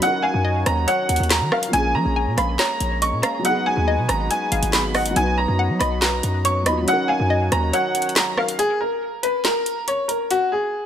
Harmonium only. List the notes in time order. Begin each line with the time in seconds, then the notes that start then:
Already playing: F#3
0.02 D#3 C#4 F#4
1.73 G#3 A#3
3.45 D#4 F#4 B4
5.16 F#3 B3
6.88 D#3 C#4 F#4